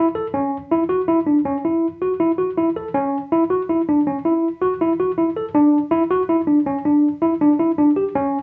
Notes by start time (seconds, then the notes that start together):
0.15 A4
0.34 C#4
0.72 E4
0.89 F#4
1.08 E4
1.27 D4
1.45 C#4
1.65 E4
2.02 F#4
2.20 E4
2.38 F#4
2.57 E4
2.76 A4
2.94 C#4
3.32 E4
3.50 F#4
3.69 E4
3.89 D4
4.07 C#4
4.25 E4
4.62 F#4
4.81 E4
5.00 F#4
5.18 E4
5.37 A4
5.55 D4
5.91 E4
6.11 F#4
6.29 E4
6.47 D4
6.66 C#4
6.85 D4
7.22 E4
7.41 D4
7.59 E4
7.78 D4
7.96 G4
8.15 C#4